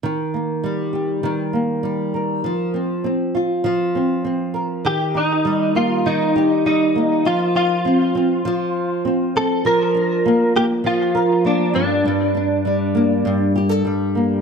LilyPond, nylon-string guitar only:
\new Staff \with { instrumentName = "Nylon-string guitar" } { \time 4/4 \key ees \lydian \tempo 4 = 100 ees8 bes8 g8 g'8 ees8 bes8 g8 bes'8 | f8 c'8 c'8 f'8 f8 c'8 c'8 bes'8 | ees8 ees'8 g8 bes8 ees8 g'8 g8 bes8 | f8 f'8 c'8 c'8 f4 c'8 c'8 |
f8 d'8 bes8 bes8 f8 bes'8 bes8 g,8 | g,8 d'8 g8 bes8 g,8 g'16 a'16 g8 bes8 | }